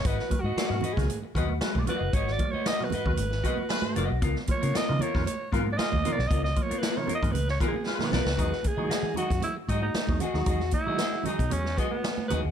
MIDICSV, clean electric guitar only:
0, 0, Header, 1, 3, 480
1, 0, Start_track
1, 0, Tempo, 521286
1, 48, Time_signature, 4, 2, 24, 8
1, 11520, End_track
2, 0, Start_track
2, 0, Title_t, "Clean electric guitar"
2, 0, Program_c, 0, 27
2, 51, Note_on_c, 0, 66, 73
2, 62, Note_on_c, 0, 71, 66
2, 67, Note_on_c, 0, 75, 82
2, 165, Note_off_c, 0, 75, 0
2, 178, Note_off_c, 0, 71, 0
2, 235, Note_off_c, 0, 66, 0
2, 414, Note_on_c, 0, 75, 55
2, 421, Note_on_c, 0, 71, 55
2, 427, Note_on_c, 0, 66, 47
2, 514, Note_off_c, 0, 66, 0
2, 522, Note_off_c, 0, 71, 0
2, 525, Note_on_c, 0, 66, 77
2, 533, Note_on_c, 0, 71, 77
2, 534, Note_off_c, 0, 75, 0
2, 545, Note_on_c, 0, 75, 89
2, 643, Note_off_c, 0, 75, 0
2, 654, Note_off_c, 0, 71, 0
2, 715, Note_off_c, 0, 66, 0
2, 760, Note_on_c, 0, 66, 63
2, 770, Note_on_c, 0, 71, 69
2, 776, Note_on_c, 0, 75, 68
2, 886, Note_off_c, 0, 75, 0
2, 894, Note_off_c, 0, 71, 0
2, 912, Note_off_c, 0, 66, 0
2, 1251, Note_on_c, 0, 66, 84
2, 1258, Note_on_c, 0, 71, 100
2, 1268, Note_on_c, 0, 75, 102
2, 1372, Note_off_c, 0, 75, 0
2, 1382, Note_off_c, 0, 71, 0
2, 1434, Note_off_c, 0, 66, 0
2, 1736, Note_on_c, 0, 66, 83
2, 1742, Note_on_c, 0, 71, 77
2, 1752, Note_on_c, 0, 75, 86
2, 1859, Note_off_c, 0, 75, 0
2, 1874, Note_off_c, 0, 71, 0
2, 1920, Note_off_c, 0, 66, 0
2, 1974, Note_on_c, 0, 66, 91
2, 1983, Note_on_c, 0, 71, 78
2, 1993, Note_on_c, 0, 75, 87
2, 2094, Note_off_c, 0, 75, 0
2, 2104, Note_off_c, 0, 71, 0
2, 2156, Note_off_c, 0, 66, 0
2, 2339, Note_on_c, 0, 75, 61
2, 2348, Note_on_c, 0, 71, 54
2, 2358, Note_on_c, 0, 66, 48
2, 2438, Note_off_c, 0, 66, 0
2, 2448, Note_off_c, 0, 71, 0
2, 2449, Note_on_c, 0, 66, 78
2, 2459, Note_on_c, 0, 71, 78
2, 2460, Note_off_c, 0, 75, 0
2, 2471, Note_on_c, 0, 75, 89
2, 2578, Note_off_c, 0, 75, 0
2, 2593, Note_off_c, 0, 71, 0
2, 2632, Note_off_c, 0, 66, 0
2, 2699, Note_on_c, 0, 66, 65
2, 2708, Note_on_c, 0, 71, 65
2, 2716, Note_on_c, 0, 75, 74
2, 2801, Note_off_c, 0, 75, 0
2, 2815, Note_off_c, 0, 71, 0
2, 2840, Note_off_c, 0, 66, 0
2, 3163, Note_on_c, 0, 66, 83
2, 3177, Note_on_c, 0, 71, 90
2, 3184, Note_on_c, 0, 75, 85
2, 3290, Note_off_c, 0, 75, 0
2, 3300, Note_off_c, 0, 71, 0
2, 3349, Note_off_c, 0, 66, 0
2, 3646, Note_on_c, 0, 66, 85
2, 3656, Note_on_c, 0, 71, 86
2, 3664, Note_on_c, 0, 75, 89
2, 3768, Note_off_c, 0, 75, 0
2, 3782, Note_off_c, 0, 71, 0
2, 3834, Note_off_c, 0, 66, 0
2, 3882, Note_on_c, 0, 59, 76
2, 3894, Note_on_c, 0, 65, 81
2, 3903, Note_on_c, 0, 70, 81
2, 4003, Note_off_c, 0, 70, 0
2, 4012, Note_off_c, 0, 65, 0
2, 4068, Note_off_c, 0, 59, 0
2, 4250, Note_on_c, 0, 70, 66
2, 4260, Note_on_c, 0, 65, 53
2, 4265, Note_on_c, 0, 59, 51
2, 4348, Note_off_c, 0, 59, 0
2, 4359, Note_off_c, 0, 65, 0
2, 4360, Note_on_c, 0, 59, 76
2, 4368, Note_off_c, 0, 70, 0
2, 4370, Note_on_c, 0, 65, 84
2, 4379, Note_on_c, 0, 70, 85
2, 4482, Note_off_c, 0, 70, 0
2, 4496, Note_off_c, 0, 65, 0
2, 4547, Note_off_c, 0, 59, 0
2, 4609, Note_on_c, 0, 59, 65
2, 4620, Note_on_c, 0, 65, 76
2, 4628, Note_on_c, 0, 70, 72
2, 4729, Note_off_c, 0, 70, 0
2, 4739, Note_off_c, 0, 65, 0
2, 4755, Note_off_c, 0, 59, 0
2, 5083, Note_on_c, 0, 59, 96
2, 5093, Note_on_c, 0, 65, 90
2, 5102, Note_on_c, 0, 70, 95
2, 5207, Note_off_c, 0, 70, 0
2, 5222, Note_off_c, 0, 65, 0
2, 5269, Note_off_c, 0, 59, 0
2, 5566, Note_on_c, 0, 59, 86
2, 5576, Note_on_c, 0, 65, 84
2, 5585, Note_on_c, 0, 70, 91
2, 5680, Note_off_c, 0, 70, 0
2, 5693, Note_off_c, 0, 65, 0
2, 5750, Note_off_c, 0, 59, 0
2, 5802, Note_on_c, 0, 59, 74
2, 5811, Note_on_c, 0, 65, 84
2, 5819, Note_on_c, 0, 70, 91
2, 5912, Note_off_c, 0, 70, 0
2, 5929, Note_off_c, 0, 65, 0
2, 5988, Note_off_c, 0, 59, 0
2, 6165, Note_on_c, 0, 70, 62
2, 6175, Note_on_c, 0, 65, 60
2, 6178, Note_on_c, 0, 59, 57
2, 6266, Note_off_c, 0, 59, 0
2, 6275, Note_off_c, 0, 65, 0
2, 6277, Note_on_c, 0, 59, 87
2, 6284, Note_off_c, 0, 70, 0
2, 6286, Note_on_c, 0, 65, 79
2, 6295, Note_on_c, 0, 70, 74
2, 6382, Note_off_c, 0, 70, 0
2, 6396, Note_off_c, 0, 65, 0
2, 6469, Note_off_c, 0, 59, 0
2, 6512, Note_on_c, 0, 59, 63
2, 6523, Note_on_c, 0, 65, 60
2, 6530, Note_on_c, 0, 70, 67
2, 6628, Note_off_c, 0, 70, 0
2, 6640, Note_off_c, 0, 65, 0
2, 6666, Note_off_c, 0, 59, 0
2, 7002, Note_on_c, 0, 59, 88
2, 7010, Note_on_c, 0, 65, 87
2, 7019, Note_on_c, 0, 70, 101
2, 7119, Note_off_c, 0, 70, 0
2, 7133, Note_off_c, 0, 65, 0
2, 7188, Note_off_c, 0, 59, 0
2, 7473, Note_on_c, 0, 59, 85
2, 7485, Note_on_c, 0, 65, 89
2, 7496, Note_on_c, 0, 70, 92
2, 7590, Note_off_c, 0, 70, 0
2, 7606, Note_off_c, 0, 65, 0
2, 7664, Note_off_c, 0, 59, 0
2, 7715, Note_on_c, 0, 66, 81
2, 7724, Note_on_c, 0, 68, 83
2, 7734, Note_on_c, 0, 75, 78
2, 7837, Note_off_c, 0, 75, 0
2, 7849, Note_off_c, 0, 68, 0
2, 7905, Note_off_c, 0, 66, 0
2, 8075, Note_on_c, 0, 75, 56
2, 8087, Note_on_c, 0, 68, 54
2, 8093, Note_on_c, 0, 66, 48
2, 8182, Note_off_c, 0, 66, 0
2, 8189, Note_off_c, 0, 68, 0
2, 8193, Note_on_c, 0, 66, 73
2, 8196, Note_off_c, 0, 75, 0
2, 8200, Note_on_c, 0, 68, 74
2, 8207, Note_on_c, 0, 75, 79
2, 8308, Note_off_c, 0, 75, 0
2, 8320, Note_off_c, 0, 68, 0
2, 8384, Note_off_c, 0, 66, 0
2, 8439, Note_on_c, 0, 66, 59
2, 8446, Note_on_c, 0, 68, 64
2, 8452, Note_on_c, 0, 75, 72
2, 8561, Note_off_c, 0, 75, 0
2, 8572, Note_off_c, 0, 68, 0
2, 8591, Note_off_c, 0, 66, 0
2, 8924, Note_on_c, 0, 66, 92
2, 8935, Note_on_c, 0, 68, 83
2, 8946, Note_on_c, 0, 75, 88
2, 9045, Note_off_c, 0, 75, 0
2, 9055, Note_off_c, 0, 68, 0
2, 9111, Note_off_c, 0, 66, 0
2, 9403, Note_on_c, 0, 66, 77
2, 9414, Note_on_c, 0, 68, 91
2, 9421, Note_on_c, 0, 75, 89
2, 9521, Note_off_c, 0, 75, 0
2, 9535, Note_off_c, 0, 68, 0
2, 9591, Note_off_c, 0, 66, 0
2, 9647, Note_on_c, 0, 66, 76
2, 9652, Note_on_c, 0, 68, 68
2, 9664, Note_on_c, 0, 75, 74
2, 9767, Note_off_c, 0, 75, 0
2, 9779, Note_off_c, 0, 68, 0
2, 9833, Note_off_c, 0, 66, 0
2, 10018, Note_on_c, 0, 75, 70
2, 10030, Note_on_c, 0, 68, 56
2, 10034, Note_on_c, 0, 66, 58
2, 10116, Note_off_c, 0, 66, 0
2, 10127, Note_on_c, 0, 66, 86
2, 10128, Note_off_c, 0, 68, 0
2, 10137, Note_off_c, 0, 75, 0
2, 10139, Note_on_c, 0, 68, 86
2, 10148, Note_on_c, 0, 75, 91
2, 10248, Note_off_c, 0, 75, 0
2, 10260, Note_off_c, 0, 68, 0
2, 10314, Note_off_c, 0, 66, 0
2, 10370, Note_on_c, 0, 66, 67
2, 10381, Note_on_c, 0, 68, 74
2, 10392, Note_on_c, 0, 75, 71
2, 10489, Note_off_c, 0, 75, 0
2, 10502, Note_off_c, 0, 68, 0
2, 10519, Note_off_c, 0, 66, 0
2, 10849, Note_on_c, 0, 66, 81
2, 10858, Note_on_c, 0, 68, 92
2, 10865, Note_on_c, 0, 75, 108
2, 10968, Note_off_c, 0, 75, 0
2, 10979, Note_off_c, 0, 68, 0
2, 11036, Note_off_c, 0, 66, 0
2, 11328, Note_on_c, 0, 66, 75
2, 11340, Note_on_c, 0, 68, 89
2, 11352, Note_on_c, 0, 75, 82
2, 11448, Note_off_c, 0, 75, 0
2, 11461, Note_off_c, 0, 68, 0
2, 11516, Note_off_c, 0, 66, 0
2, 11520, End_track
3, 0, Start_track
3, 0, Title_t, "Muted clean electric guitar strokes"
3, 176, Note_on_c, 9, 29, 45
3, 268, Note_off_c, 9, 29, 0
3, 283, Note_on_c, 9, 29, 44
3, 376, Note_off_c, 9, 29, 0
3, 654, Note_on_c, 9, 29, 55
3, 746, Note_off_c, 9, 29, 0
3, 897, Note_on_c, 9, 29, 40
3, 989, Note_off_c, 9, 29, 0
3, 1009, Note_on_c, 9, 29, 34
3, 1101, Note_off_c, 9, 29, 0
3, 1137, Note_on_c, 9, 29, 46
3, 1229, Note_off_c, 9, 29, 0
3, 1383, Note_on_c, 9, 29, 38
3, 1475, Note_off_c, 9, 29, 0
3, 1497, Note_on_c, 9, 29, 48
3, 1589, Note_off_c, 9, 29, 0
3, 1622, Note_on_c, 9, 29, 53
3, 1715, Note_off_c, 9, 29, 0
3, 1870, Note_on_c, 9, 29, 36
3, 1962, Note_off_c, 9, 29, 0
3, 2105, Note_on_c, 9, 29, 46
3, 2197, Note_off_c, 9, 29, 0
3, 2222, Note_on_c, 9, 29, 43
3, 2314, Note_off_c, 9, 29, 0
3, 2589, Note_on_c, 9, 29, 55
3, 2681, Note_off_c, 9, 29, 0
3, 2812, Note_on_c, 9, 29, 47
3, 2904, Note_off_c, 9, 29, 0
3, 2926, Note_on_c, 9, 29, 33
3, 3018, Note_off_c, 9, 29, 0
3, 3049, Note_on_c, 9, 29, 46
3, 3141, Note_off_c, 9, 29, 0
3, 3301, Note_on_c, 9, 29, 43
3, 3393, Note_off_c, 9, 29, 0
3, 3532, Note_on_c, 9, 29, 44
3, 3624, Note_off_c, 9, 29, 0
3, 3779, Note_on_c, 9, 29, 48
3, 3871, Note_off_c, 9, 29, 0
3, 4014, Note_on_c, 9, 29, 45
3, 4106, Note_off_c, 9, 29, 0
3, 4126, Note_on_c, 9, 29, 40
3, 4218, Note_off_c, 9, 29, 0
3, 4493, Note_on_c, 9, 29, 54
3, 4585, Note_off_c, 9, 29, 0
3, 4740, Note_on_c, 9, 29, 51
3, 4832, Note_off_c, 9, 29, 0
3, 4849, Note_on_c, 9, 29, 40
3, 4942, Note_off_c, 9, 29, 0
3, 4976, Note_on_c, 9, 29, 42
3, 5068, Note_off_c, 9, 29, 0
3, 5218, Note_on_c, 9, 29, 43
3, 5310, Note_off_c, 9, 29, 0
3, 5327, Note_on_c, 9, 29, 48
3, 5419, Note_off_c, 9, 29, 0
3, 5457, Note_on_c, 9, 29, 56
3, 5550, Note_off_c, 9, 29, 0
3, 5691, Note_on_c, 9, 29, 44
3, 5783, Note_off_c, 9, 29, 0
3, 5923, Note_on_c, 9, 29, 42
3, 6015, Note_off_c, 9, 29, 0
3, 6039, Note_on_c, 9, 29, 41
3, 6131, Note_off_c, 9, 29, 0
3, 6393, Note_on_c, 9, 29, 51
3, 6485, Note_off_c, 9, 29, 0
3, 6760, Note_on_c, 9, 29, 38
3, 6852, Note_off_c, 9, 29, 0
3, 6891, Note_on_c, 9, 29, 58
3, 6983, Note_off_c, 9, 29, 0
3, 7130, Note_on_c, 9, 29, 38
3, 7222, Note_off_c, 9, 29, 0
3, 7248, Note_on_c, 9, 29, 50
3, 7340, Note_off_c, 9, 29, 0
3, 7368, Note_on_c, 9, 29, 41
3, 7461, Note_off_c, 9, 29, 0
3, 7601, Note_on_c, 9, 29, 35
3, 7693, Note_off_c, 9, 29, 0
3, 7848, Note_on_c, 9, 29, 38
3, 7940, Note_off_c, 9, 29, 0
3, 7949, Note_on_c, 9, 29, 36
3, 8041, Note_off_c, 9, 29, 0
3, 8319, Note_on_c, 9, 29, 45
3, 8411, Note_off_c, 9, 29, 0
3, 8572, Note_on_c, 9, 29, 40
3, 8664, Note_off_c, 9, 29, 0
3, 8677, Note_on_c, 9, 29, 37
3, 8769, Note_off_c, 9, 29, 0
3, 8810, Note_on_c, 9, 29, 48
3, 8902, Note_off_c, 9, 29, 0
3, 9056, Note_on_c, 9, 29, 36
3, 9148, Note_off_c, 9, 29, 0
3, 9168, Note_on_c, 9, 29, 51
3, 9260, Note_off_c, 9, 29, 0
3, 9301, Note_on_c, 9, 29, 42
3, 9394, Note_off_c, 9, 29, 0
3, 9532, Note_on_c, 9, 29, 50
3, 9624, Note_off_c, 9, 29, 0
3, 9778, Note_on_c, 9, 29, 46
3, 9870, Note_off_c, 9, 29, 0
3, 9900, Note_on_c, 9, 29, 34
3, 9992, Note_off_c, 9, 29, 0
3, 10259, Note_on_c, 9, 29, 56
3, 10351, Note_off_c, 9, 29, 0
3, 10500, Note_on_c, 9, 29, 43
3, 10592, Note_off_c, 9, 29, 0
3, 10608, Note_on_c, 9, 29, 31
3, 10700, Note_off_c, 9, 29, 0
3, 10735, Note_on_c, 9, 29, 47
3, 10827, Note_off_c, 9, 29, 0
3, 10979, Note_on_c, 9, 29, 38
3, 11071, Note_off_c, 9, 29, 0
3, 11088, Note_on_c, 9, 29, 40
3, 11181, Note_off_c, 9, 29, 0
3, 11215, Note_on_c, 9, 29, 31
3, 11307, Note_off_c, 9, 29, 0
3, 11459, Note_on_c, 9, 29, 41
3, 11520, Note_off_c, 9, 29, 0
3, 11520, End_track
0, 0, End_of_file